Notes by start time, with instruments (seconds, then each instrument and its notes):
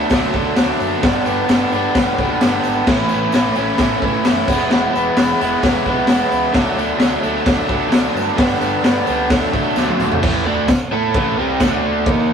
Already playing: overdriven electric guitar D3 F#3 A3 D4
0.09 picked electric bass D2, overdriven electric guitar D3 F#3, kick, snare, open hi-hat, tambourine
0.14 overdriven electric guitar A3 D4
0.34 picked electric bass D2, overdriven electric guitar F#3 A3 D4, kick
0.56 picked electric bass D2, overdriven electric guitar D3 F#3 A3 D4, snare, open hi-hat, tambourine
0.80 picked electric bass F#1, tambourine
1.02 picked electric bass G1, overdriven electric guitar G2 D3 G3 B3 D4, kick, snare, open hi-hat, tambourine
1.26 picked electric bass G1, overdriven electric guitar G3 B3 D4, tambourine
1.48 picked electric bass G1, overdriven electric guitar D3 G3 B3 D4, snare, open hi-hat, tambourine
1.72 picked electric bass G1, overdriven electric guitar G3 B3 D4, tambourine
1.95 picked electric bass G1, overdriven electric guitar G2 D3 G3 B3 D4, kick, snare, open hi-hat, tambourine
2.19 picked electric bass D2, overdriven electric guitar G3 B3 D4, kick, tambourine
2.41 picked electric bass G1, overdriven electric guitar D3 G3 B3, snare, open hi-hat, tambourine
2.45 overdriven electric guitar D4
2.64 picked electric bass G#1, tambourine
2.87 picked electric bass A1, overdriven electric guitar A2 E3 A3 C#4 E4, kick, snare, tambourine, crash
3.09 picked electric bass A1, overdriven electric guitar A3 C#4 E4, tambourine
3.32 picked electric bass A1, overdriven electric guitar E3 A3 C#4 E4, snare, open hi-hat, tambourine
3.56 picked electric bass A1, overdriven electric guitar A3 C#4 E4, tambourine
3.78 picked electric bass A1, overdriven electric guitar A2 E3 A3 C#4 E4, kick, snare, open hi-hat, tambourine
4.02 picked electric bass A1, overdriven electric guitar C#4 E4, kick
4.06 overdriven electric guitar A3
4.25 picked electric bass F#1, overdriven electric guitar E3 A3 C#4 E4, snare, open hi-hat, tambourine
4.48 picked electric bass E1, overdriven electric guitar E3 G#3 B3 E4, kick, tambourine, crash
4.70 picked electric bass E1, overdriven electric guitar E3 G#3 B3 E4, snare, tambourine
4.94 picked electric bass E1, overdriven electric guitar G#3 B3 E4, tambourine
5.17 picked electric bass E1, overdriven electric guitar E3 G#3 B3 E4, snare, open hi-hat, tambourine
5.41 picked electric bass E1, overdriven electric guitar G#3 B3 E4, tambourine
5.62 picked electric bass E1, overdriven electric guitar E3 G#3 B3 E4, kick, snare, open hi-hat, tambourine
5.85 picked electric bass B1, overdriven electric guitar G#3 B3 E4, kick
6.07 picked electric bass E1, overdriven electric guitar E3 G#3 B3 E4, snare, open hi-hat, tambourine
6.32 picked electric bass C#2, tambourine
6.53 picked electric bass D2, overdriven electric guitar D3 F#3 A3 D4, kick, snare, open hi-hat, tambourine
6.75 picked electric bass D2, overdriven electric guitar F#3 A3 D4, tambourine
6.98 picked electric bass D2, overdriven electric guitar D3 F#3 A3 D4, snare, open hi-hat, tambourine
7.22 picked electric bass D2, overdriven electric guitar F#3 A3 D4, tambourine
7.45 picked electric bass D2, overdriven electric guitar D3 F#3 A3 D4, kick, snare, open hi-hat, tambourine
7.68 picked electric bass D2, overdriven electric guitar F#3 A3 D4, kick
7.90 picked electric bass D2, overdriven electric guitar D3 F#3 A3 D4, snare, open hi-hat, tambourine
8.15 picked electric bass G2, tambourine
8.36 picked electric bass G1, overdriven electric guitar G2 D3 G3 B3 D4, kick, snare, open hi-hat, tambourine
8.60 picked electric bass G1, overdriven electric guitar G3 B3 D4, tambourine
8.83 picked electric bass G1, overdriven electric guitar D3 G3 B3 D4, snare, open hi-hat, tambourine
9.05 picked electric bass C#2, overdriven electric guitar G3 B3 D4, tambourine
9.30 picked electric bass D2, overdriven electric guitar D3 F#3 A3 D4, kick, snare, open hi-hat, tambourine
9.52 picked electric bass A2, overdriven electric guitar F#3 A3 D4, kick, tambourine
9.75 picked electric bass D2, overdriven electric guitar D3 F#3 A3 D4, snare, tambourine
9.88 high tom
10.00 picked electric bass D2, mid tom, tambourine
10.12 floor tom
10.22 picked electric bass A1, overdriven electric guitar A2 E3 A3, kick, crash
10.43 picked electric bass D2, overdriven electric guitar D3 A3 D4
10.68 muted picked electric bass stroke, muted overdriven electric guitar stroke, kick, snare, tambourine, crash
10.91 picked electric bass A2, overdriven electric guitar A3 E4 A4
11.14 picked electric bass A1, overdriven electric guitar A2 E3 A3, kick, crash
11.37 picked electric bass C2, overdriven electric guitar C3 G3 C4
11.60 picked electric bass D2, overdriven electric guitar D3 A3 D4, kick, snare, tambourine, crash
12.06 picked electric bass D#2, overdriven electric guitar D#3 A#3 D#4, kick, crash